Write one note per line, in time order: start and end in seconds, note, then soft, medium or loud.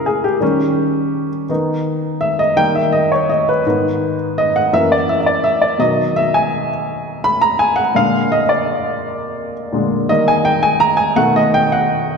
0.00 0.37 C#3 soft
0.00 0.38 G#3 soft
0.00 0.38 E4 medium
0.00 0.06 G#4 medium
0.00 0.43 A#4 medium
0.06 0.24 G#4 medium
0.24 1.28 G4 medium
0.41 1.45 D#3 medium
0.41 1.45 G3 medium
0.41 1.46 C#4 medium
1.49 2.53 D#3 medium
1.49 2.53 B3 soft
1.49 2.54 D#4 medium
2.21 2.40 E5 medium
2.39 2.58 D#5 medium
2.56 3.60 D#3 medium
2.56 3.61 G3 medium
2.56 3.61 A#3 medium
2.56 2.76 G5 loud
2.75 2.80 E5 medium
2.93 3.11 D#5 medium
3.12 3.30 C#5 medium
3.30 3.48 D#5 medium
3.49 4.16 B4 medium
3.66 4.69 G#2 medium
3.66 4.70 D#3 soft
3.66 4.70 B3 medium
4.38 4.56 D#5 medium
4.56 4.74 F#5 medium
4.73 5.76 F#2 medium
4.73 5.76 E3 medium
4.73 5.77 A#3 medium
4.73 4.90 E5 medium
4.92 5.10 D5 medium
5.09 5.19 E5 medium
5.21 5.26 E5 medium
5.26 5.45 D5 medium
5.44 5.62 E5 medium
5.62 5.79 D5 medium
5.78 7.90 B2 soft
5.78 7.90 D#3 soft
5.78 7.91 F#3 medium
5.78 6.17 D#5 medium
6.16 6.35 E5 medium
6.34 6.67 G#5 medium
7.24 7.42 B5 medium
7.41 7.60 A#5 medium
7.59 7.76 G#5 medium
7.76 7.81 F#5 medium
7.94 8.42 A#2 medium
7.94 8.43 D3 soft
7.94 8.43 G#3 medium
7.94 8.33 F5 medium
8.32 8.40 D#5 medium
8.41 8.49 D#5 medium
8.49 9.52 D5 medium
9.72 10.05 A#2 soft
9.72 10.05 D3 soft
9.72 10.06 G#3 soft
10.09 10.57 D#3 medium
10.09 10.57 G3 soft
10.09 10.57 A#3 medium
10.09 10.26 D#5 medium
10.28 10.46 G#5 medium
10.45 10.64 G5 medium
10.63 10.81 G#5 medium
10.80 10.99 A#5 loud
10.97 11.16 G#5 medium
11.16 11.64 B2 medium
11.16 11.64 D#3 medium
11.16 11.65 A3 medium
11.16 11.33 F#5 loud
11.36 11.54 D#5 medium
11.54 11.72 G5 medium
11.72 12.17 F#5 medium